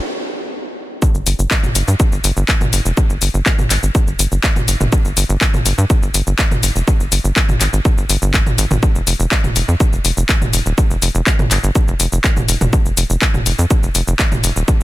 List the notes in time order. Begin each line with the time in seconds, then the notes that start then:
1.02 kick, shaker
1.15 G1, shaker
1.27 G1, open hi-hat, shaker
1.39 G1, shaker
1.51 kick, clap, shaker
1.63 G1, mid tom, shaker
1.75 G1, open hi-hat, shaker
1.88 G2, shaker
2.00 kick, shaker
2.12 G1, shaker
2.24 G1, open hi-hat, shaker
2.37 G1, shaker
2.49 kick, clap, shaker
2.61 G1, mid tom, shaker
2.73 G1, open hi-hat, shaker
2.85 F1, shaker
2.97 kick, shaker
3.10 G1, shaker
3.22 G1, open hi-hat, shaker
3.34 G1, shaker
3.46 kick, clap, shaker
3.59 G#1, mid tom, shaker
3.70 G#1, clap, open hi-hat, shaker
3.83 G#1, shaker
3.95 kick, shaker
4.07 G1, shaker
4.19 G1, open hi-hat, shaker
4.32 G1, shaker
4.44 kick, clap, shaker
4.56 G1, mid tom, shaker
4.68 G1, open hi-hat, shaker
4.81 G1, mid tom, shaker
4.92 kick, shaker
5.05 G1, shaker
5.17 G1, open hi-hat, shaker
5.29 G1, shaker
5.41 kick, clap, shaker
5.54 G1, mid tom, shaker
5.66 G1, open hi-hat, shaker
5.78 G2, shaker
5.90 kick, shaker
6.02 G1, shaker
6.14 G1, open hi-hat, shaker
6.27 G1, shaker
6.39 kick, clap, shaker
6.51 G1, mid tom, shaker
6.63 G1, open hi-hat, shaker
6.76 F1, shaker
6.88 kick, shaker
7.00 G1, shaker
7.12 G1, open hi-hat, shaker
7.24 G1, shaker
7.36 kick, clap, shaker
7.49 G#1, mid tom, shaker
7.61 G#1, clap, open hi-hat, shaker
7.73 G#1, shaker
7.85 kick, shaker
7.98 G1, shaker
8.09 G1, open hi-hat, shaker
8.22 G1, shaker
8.34 kick, clap, shaker
8.46 G#1, mid tom, shaker
8.58 G#1, open hi-hat, shaker
8.71 G#1, mid tom, shaker
8.83 kick, shaker
8.95 F1, shaker
9.07 F1, open hi-hat, shaker
9.20 F1, shaker
9.32 kick, clap, shaker
9.44 F1, mid tom, shaker
9.56 F1, open hi-hat, shaker
9.68 F2, shaker
9.80 kick, shaker
9.93 F1, shaker
10.05 F1, open hi-hat, shaker
10.17 F1, shaker
10.29 kick, clap, shaker
10.42 F1, mid tom, shaker
10.53 F1, open hi-hat, shaker
10.66 D#1, shaker
10.78 kick, shaker
10.90 F1, shaker
11.02 F1, open hi-hat, shaker
11.15 F1, shaker
11.27 kick, clap, shaker
11.39 G1, mid tom, shaker
11.51 G1, clap, open hi-hat, shaker
11.64 G1, shaker
11.75 kick, shaker
11.88 F1, shaker
12.00 F1, open hi-hat, shaker
12.12 F1, shaker
12.24 kick, clap, shaker
12.37 F1, mid tom, shaker
12.48 F1, open hi-hat, shaker
12.61 F1, mid tom, shaker
12.73 kick, shaker
12.85 F1, shaker
12.97 F1, open hi-hat, shaker
13.10 F1, shaker
13.22 kick, clap, shaker
13.34 F1, mid tom, shaker
13.46 F1, open hi-hat, shaker
13.59 F2, shaker
13.71 kick, shaker
13.83 F1, shaker
13.95 F1, open hi-hat, shaker
14.07 F1, shaker
14.19 kick, clap, shaker
14.32 F1, mid tom, shaker
14.44 F1, open hi-hat, shaker
14.56 D#1, shaker
14.68 kick, shaker